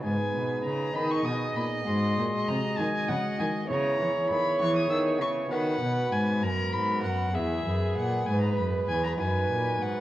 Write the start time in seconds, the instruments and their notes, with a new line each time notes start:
0.00 pipe organ B3 D#4 G#4, violin G#5
0.04 pipe organ G#2, cello G#2, violin B4
0.34 cello B2, pipe organ B2
0.64 pipe organ C#3, cello C#3, violin A#5
0.95 pipe organ D#3, cello D#3, violin D#5 B5
1.11 violin C#6
1.25 pipe organ B2, cello B2, violin D#6
1.56 cello A#2, pipe organ A#2, violin B5
1.83 pipe organ G#3 F#4 G#4, violin C6
1.87 pipe organ G#2, cello G#2
2.18 cello A#2, pipe organ A#2
2.48 pipe organ C3, cello C3, violin A#5
2.78 cello D#3, pipe organ D#3, violin G#5
3.09 cello C#3, pipe organ C#3, violin F#5
3.39 cello D#3, pipe organ D#3, violin G#5
3.64 pipe organ B3 E4 G#4
3.69 pipe organ C#3, cello C#3, violin C#5 A#5
3.99 pipe organ E3, cello E3
4.30 pipe organ D#3, cello D#3, violin B5
4.60 pipe organ E3, cello E3, violin C#6
4.76 violin D#6
4.90 cello D#3, pipe organ D#3, violin E6
5.20 pipe organ C#3, cello C#3, violin C#6
5.46 pipe organ B3 F#4 B4
5.50 cello D#3, pipe organ D#3, violin B4 F#5
5.81 cello B2, pipe organ B2
6.12 cello G#2, pipe organ G#2, violin G#5
6.43 cello F#2, pipe organ F#2, violin A#4 A#5
6.73 cello G#2, pipe organ G#2, violin B5
7.03 cello F#2, pipe organ F#2, violin F#5
7.31 pipe organ B3 G#4 B4, violin G#4 E5
7.36 pipe organ E2, cello E2
7.66 cello F#2, pipe organ F#2
7.97 cello A#2, pipe organ A#2, violin F#5
8.26 cello G#2, pipe organ G#2, violin B4 G#5
8.42 violin A#5
8.56 cello F#2, pipe organ F#2, violin B5
8.88 cello E2, pipe organ E2, violin G#5
9.04 violin A#5
9.15 cello F#2, pipe organ D#4 F#4 B4, violin G#5
9.20 pipe organ F#2, violin B4
9.50 cello A#2, pipe organ A#2
9.81 cello G#2, pipe organ G#2, violin F#5